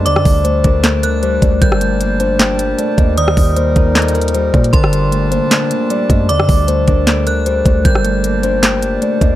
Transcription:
<<
  \new Staff \with { instrumentName = "Synth bell" } { \time 4/4 \key g \minor \tempo 4 = 154 d'''4 r4. fis'''4. | g'''1 | ees'''4 r2. | c'''1 |
d'''4 r4. fis'''4. | g'''1 | }
  \new Staff \with { instrumentName = "Kalimba" } { \time 4/4 \key g \minor d''4 c''8 bes'8 a'8 bes'8 c''8 d''8 | bes'4 r8 c''4. d''8 ees''8 | d''4 c''8 bes'8 a'8 bes'8 c''8 d''8 | bes'4 r8 c''4. d''8 ees''8 |
d''4 c''8 r8 a'8 bes'8 c''8 d''8 | bes'4 r8 c''4. d''8 ees''8 | }
  \new Staff \with { instrumentName = "Accordion" } { \time 4/4 \key g \minor << { a''1~ | a''1 | bes'1 | a''1~ |
a''1~ | a''1 | } \\ { d'1 | d'1 | ees'1 | d'1 |
d'1~ | d'1 | } >> }
  \new Staff \with { instrumentName = "Accordion" } { \clef bass \time 4/4 \key g \minor << { g1~ | g1~ | g1 | g1~ |
g1~ | g1 | } \\ { a1 | bes,1~ | bes,1~ | bes,1 |
a1 | bes,1 | } >> }
  \new Staff \with { instrumentName = "Clean electric guitar" } { \time 4/4 \key g \minor d8 g8 a8 d'8 d''4 g8 a8 | g8 a8 bes8 d'8 g'4 a8 bes8 | ees8 g8 bes8 ees'8 ees''4 g8 bes8 | d8 g8 a8 bes8 d'4 g8 a8 |
d8 g8 a8 d'8 d''4 g8 a8 | g8 a8 bes8 d'8 g'4 a8 bes8 | }
  \new Staff \with { instrumentName = "808-style bass" } { \clef bass \time 4/4 \key g \minor ees,16 fis,16 d,4 d,2 d,8 | g,,2. r8 ees,8~ | ees,8 ees,4 ees,2 bes,8 | g,,4.~ g,,16 r4. r16 fis,8 |
ees,16 fis,16 d,4 d,2 d,8 | g,,2. r8 ees,8 | }
  \new DrumStaff \with { instrumentName = "Drums" } \drummode { \time 4/4 hh16 ss16 <hho bd>8 hh8 <hh bd>8 <hc hh sn>8 hh8 hh8 <hh bd>8 | <hh bd>16 ss16 hh8 hh8 hh8 <hc hh sn>8 hh8 hh8 <hh bd>8 | hh16 ss16 <hho bd>8 hh8 <hh bd>8 \tuplet 3/2 { <hc hh sn>16 hh16 hh16 hh16 hh16 hh16 } hh8 <hh bd>16 hh16 | <hh bd>16 ss16 hh8 hh8 hh8 <hc hh sn>8 hh8 hh8 <hh bd>8 |
hh16 ss16 <hho bd>8 hh8 <hh bd>8 <hc hh sn>8 hh8 hh8 <hh bd>8 | <hh bd>16 ss16 hh8 hh8 hh8 <hc hh sn>8 hh8 hh8 <hh bd>8 | }
>>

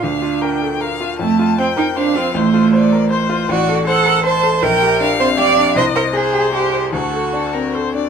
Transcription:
<<
  \new Staff \with { instrumentName = "Violin" } { \time 3/4 \key f \mixolydian \tempo 4 = 156 f''4 g''4 f''4 | a''4 g''4 f''4 | c''4 d''4 c''4 | \key d \phrygian d''4 fis''4 a''4 |
g''4 f''2 | ees''4 c''2 | a'4 a'8 bes'8 c''8 d''8 | }
  \new Staff \with { instrumentName = "Grand piano" } { \time 3/4 \key f \mixolydian d,8 f'8 bes'8 a'8 bes'8 f'8 | f,8 f'8 c''8 bes'8 c''8 f'8 | a,,8 f'8 c''8 bes'8 c''8 f'8 | \key d \phrygian a,,8 a'8 c''8 bes'8 c''8 a'8 |
bes,,8 g'8 d'8 c'8 g'8 d'8 | c,8 c''8 aes'8 g'8 aes'8 c''8 | d,8 a'8 d'8 c'8 a'8 d'8 | }
  \new Staff \with { instrumentName = "Cello" } { \time 3/4 \key f \mixolydian d'2~ d'8 r8 | a4 c'8 ees'8 d'8 c'8 | a2~ a8 r8 | \key d \phrygian fis'4 a'4 c''4 |
bes'4. c''8 d''4 | c''8 bes'8 aes'4 g'4 | fis'2 r4 | }
>>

